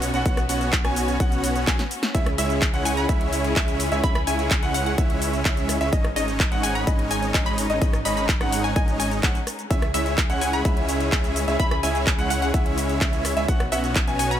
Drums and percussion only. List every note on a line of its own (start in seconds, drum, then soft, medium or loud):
0.02 open hi-hat loud
0.02 shaker medium
0.14 closed hi-hat soft
0.14 shaker soft
0.26 kick loud
0.26 closed hi-hat loud
0.26 shaker soft
0.37 cross-stick medium
0.37 closed hi-hat soft
0.37 shaker soft
0.49 open hi-hat loud
0.49 shaker medium
0.61 closed hi-hat soft
0.61 shaker soft
0.73 kick loud
0.73 clap loud
0.73 closed hi-hat loud
0.73 shaker soft
0.85 cross-stick medium
0.85 closed hi-hat soft
0.85 shaker soft
0.96 open hi-hat loud
0.96 shaker medium
1.08 closed hi-hat soft
1.08 shaker soft
1.20 kick loud
1.20 closed hi-hat loud
1.20 shaker soft
1.32 closed hi-hat soft
1.32 shaker soft
1.44 open hi-hat loud
1.44 shaker medium
1.56 closed hi-hat soft
1.56 shaker soft
1.67 kick loud
1.67 snare medium
1.67 clap loud
1.67 closed hi-hat medium
1.67 shaker soft
1.79 snare medium
1.79 closed hi-hat soft
1.79 shaker soft
1.91 open hi-hat loud
1.91 shaker medium
2.03 snare medium
2.03 closed hi-hat soft
2.03 shaker soft
2.15 kick loud
2.15 closed hi-hat loud
2.15 shaker soft
2.26 cross-stick medium
2.26 closed hi-hat soft
2.38 open hi-hat loud
2.38 shaker medium
2.50 closed hi-hat soft
2.50 shaker soft
2.62 kick loud
2.62 clap loud
2.62 closed hi-hat loud
2.62 shaker soft
2.74 closed hi-hat soft
2.74 shaker soft
2.85 open hi-hat loud
2.85 shaker medium
2.97 closed hi-hat soft
2.97 shaker soft
3.09 kick loud
3.09 closed hi-hat loud
3.09 shaker soft
3.21 closed hi-hat soft
3.33 open hi-hat loud
3.33 shaker medium
3.44 closed hi-hat soft
3.44 shaker soft
3.56 kick loud
3.56 clap loud
3.56 closed hi-hat medium
3.56 shaker soft
3.68 closed hi-hat soft
3.68 shaker soft
3.80 open hi-hat loud
3.80 shaker medium
3.92 closed hi-hat soft
3.92 shaker soft
4.04 kick loud
4.04 closed hi-hat medium
4.04 shaker soft
4.15 cross-stick medium
4.15 closed hi-hat soft
4.27 open hi-hat loud
4.27 shaker medium
4.39 closed hi-hat soft
4.39 shaker soft
4.51 kick loud
4.51 clap loud
4.51 closed hi-hat medium
4.51 shaker soft
4.63 closed hi-hat soft
4.63 shaker soft
4.74 open hi-hat loud
4.74 shaker medium
4.86 closed hi-hat soft
4.86 shaker soft
4.98 kick loud
4.98 closed hi-hat loud
4.98 shaker soft
5.10 closed hi-hat soft
5.22 open hi-hat loud
5.22 shaker medium
5.33 closed hi-hat soft
5.33 shaker soft
5.45 kick loud
5.45 clap loud
5.45 closed hi-hat medium
5.45 shaker soft
5.57 closed hi-hat soft
5.57 shaker soft
5.69 cross-stick medium
5.69 open hi-hat loud
5.69 shaker medium
5.81 closed hi-hat soft
5.81 shaker soft
5.93 kick loud
5.93 closed hi-hat medium
5.93 shaker soft
6.05 cross-stick medium
6.05 closed hi-hat soft
6.16 open hi-hat loud
6.16 shaker medium
6.28 closed hi-hat soft
6.28 shaker soft
6.40 kick loud
6.40 clap loud
6.40 closed hi-hat medium
6.40 shaker soft
6.52 closed hi-hat soft
6.52 shaker soft
6.64 open hi-hat loud
6.64 shaker medium
6.75 closed hi-hat soft
6.75 shaker soft
6.87 kick loud
6.87 closed hi-hat loud
6.87 shaker soft
6.99 closed hi-hat soft
7.11 open hi-hat loud
7.11 shaker medium
7.23 closed hi-hat soft
7.23 shaker soft
7.34 kick loud
7.34 clap loud
7.34 closed hi-hat medium
7.34 shaker soft
7.46 closed hi-hat soft
7.46 shaker soft
7.58 open hi-hat loud
7.58 shaker medium
7.70 closed hi-hat soft
7.70 shaker soft
7.82 kick loud
7.82 closed hi-hat medium
7.82 shaker soft
7.93 cross-stick medium
7.93 closed hi-hat soft
7.93 shaker soft
8.05 open hi-hat loud
8.05 shaker medium
8.17 closed hi-hat soft
8.17 shaker soft
8.29 kick loud
8.29 clap loud
8.29 closed hi-hat medium
8.29 shaker soft
8.41 cross-stick medium
8.41 closed hi-hat soft
8.41 shaker soft
8.52 open hi-hat loud
8.52 shaker medium
8.64 closed hi-hat soft
8.64 shaker soft
8.76 kick loud
8.76 closed hi-hat medium
8.76 shaker soft
8.88 closed hi-hat soft
8.88 shaker soft
9.00 open hi-hat loud
9.00 shaker medium
9.11 closed hi-hat soft
9.11 shaker soft
9.23 kick loud
9.23 clap loud
9.23 closed hi-hat medium
9.23 shaker soft
9.35 closed hi-hat soft
9.35 shaker soft
9.47 cross-stick medium
9.47 open hi-hat loud
9.47 shaker medium
9.59 closed hi-hat soft
9.59 shaker soft
9.71 kick loud
9.71 closed hi-hat medium
9.71 shaker soft
9.82 cross-stick medium
9.82 closed hi-hat soft
9.94 open hi-hat loud
9.94 shaker medium
10.06 closed hi-hat soft
10.06 shaker soft
10.18 kick loud
10.18 clap loud
10.18 closed hi-hat medium
10.18 shaker soft
10.30 closed hi-hat soft
10.30 shaker soft
10.41 open hi-hat loud
10.41 shaker medium
10.53 closed hi-hat soft
10.53 shaker soft
10.65 kick loud
10.65 closed hi-hat medium
10.65 shaker soft
10.77 closed hi-hat soft
10.89 open hi-hat loud
10.89 shaker medium
11.00 closed hi-hat soft
11.00 shaker soft
11.12 kick loud
11.12 clap loud
11.12 closed hi-hat medium
11.12 shaker soft
11.24 closed hi-hat soft
11.24 shaker soft
11.36 open hi-hat loud
11.36 shaker medium
11.48 closed hi-hat soft
11.48 shaker soft
11.60 kick loud
11.60 closed hi-hat medium
11.60 shaker soft
11.71 cross-stick medium
11.71 closed hi-hat soft
11.83 open hi-hat loud
11.83 shaker medium
11.95 closed hi-hat soft
11.95 shaker soft
12.07 kick loud
12.07 clap loud
12.07 closed hi-hat medium
12.07 shaker soft
12.19 closed hi-hat soft
12.19 shaker soft
12.30 open hi-hat loud
12.30 shaker medium
12.42 closed hi-hat soft
12.42 shaker soft
12.54 kick loud
12.54 closed hi-hat loud
12.54 shaker soft
12.66 closed hi-hat soft
12.78 open hi-hat loud
12.78 shaker medium
12.89 closed hi-hat soft
12.89 shaker soft
13.01 kick loud
13.01 clap loud
13.01 closed hi-hat medium
13.01 shaker soft
13.13 closed hi-hat soft
13.13 shaker soft
13.25 cross-stick medium
13.25 open hi-hat loud
13.25 shaker medium
13.37 closed hi-hat soft
13.37 shaker soft
13.48 kick loud
13.48 closed hi-hat medium
13.48 shaker soft
13.60 cross-stick medium
13.60 closed hi-hat soft
13.72 open hi-hat loud
13.72 shaker medium
13.84 closed hi-hat soft
13.84 shaker soft
13.95 kick loud
13.95 clap loud
13.95 closed hi-hat loud
13.95 shaker soft
14.08 closed hi-hat soft
14.08 shaker soft
14.19 open hi-hat loud
14.19 shaker medium
14.31 closed hi-hat soft
14.31 shaker soft